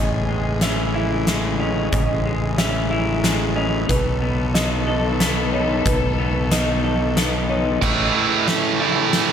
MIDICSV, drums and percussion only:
0, 0, Header, 1, 2, 480
1, 0, Start_track
1, 0, Tempo, 655022
1, 1412, Time_signature, 3, 2, 24, 8
1, 6833, End_track
2, 0, Start_track
2, 0, Title_t, "Drums"
2, 448, Note_on_c, 9, 38, 64
2, 448, Note_on_c, 9, 42, 50
2, 522, Note_off_c, 9, 38, 0
2, 522, Note_off_c, 9, 42, 0
2, 931, Note_on_c, 9, 38, 68
2, 931, Note_on_c, 9, 42, 46
2, 1005, Note_off_c, 9, 38, 0
2, 1005, Note_off_c, 9, 42, 0
2, 1411, Note_on_c, 9, 42, 40
2, 1412, Note_on_c, 9, 36, 83
2, 1484, Note_off_c, 9, 42, 0
2, 1486, Note_off_c, 9, 36, 0
2, 1894, Note_on_c, 9, 38, 71
2, 1894, Note_on_c, 9, 42, 47
2, 1967, Note_off_c, 9, 38, 0
2, 1967, Note_off_c, 9, 42, 0
2, 2375, Note_on_c, 9, 38, 70
2, 2375, Note_on_c, 9, 42, 47
2, 2448, Note_off_c, 9, 38, 0
2, 2448, Note_off_c, 9, 42, 0
2, 2853, Note_on_c, 9, 36, 75
2, 2854, Note_on_c, 9, 42, 44
2, 2927, Note_off_c, 9, 36, 0
2, 2927, Note_off_c, 9, 42, 0
2, 3336, Note_on_c, 9, 38, 75
2, 3336, Note_on_c, 9, 42, 52
2, 3409, Note_off_c, 9, 38, 0
2, 3409, Note_off_c, 9, 42, 0
2, 3813, Note_on_c, 9, 38, 67
2, 3813, Note_on_c, 9, 42, 49
2, 3886, Note_off_c, 9, 38, 0
2, 3886, Note_off_c, 9, 42, 0
2, 4291, Note_on_c, 9, 42, 46
2, 4292, Note_on_c, 9, 36, 83
2, 4365, Note_off_c, 9, 42, 0
2, 4366, Note_off_c, 9, 36, 0
2, 4774, Note_on_c, 9, 38, 70
2, 4774, Note_on_c, 9, 42, 56
2, 4847, Note_off_c, 9, 38, 0
2, 4847, Note_off_c, 9, 42, 0
2, 5254, Note_on_c, 9, 38, 62
2, 5254, Note_on_c, 9, 42, 50
2, 5327, Note_off_c, 9, 38, 0
2, 5327, Note_off_c, 9, 42, 0
2, 5733, Note_on_c, 9, 36, 83
2, 5735, Note_on_c, 9, 49, 80
2, 5806, Note_off_c, 9, 36, 0
2, 5808, Note_off_c, 9, 49, 0
2, 6212, Note_on_c, 9, 38, 68
2, 6212, Note_on_c, 9, 51, 54
2, 6285, Note_off_c, 9, 38, 0
2, 6285, Note_off_c, 9, 51, 0
2, 6690, Note_on_c, 9, 38, 64
2, 6690, Note_on_c, 9, 51, 53
2, 6764, Note_off_c, 9, 38, 0
2, 6764, Note_off_c, 9, 51, 0
2, 6833, End_track
0, 0, End_of_file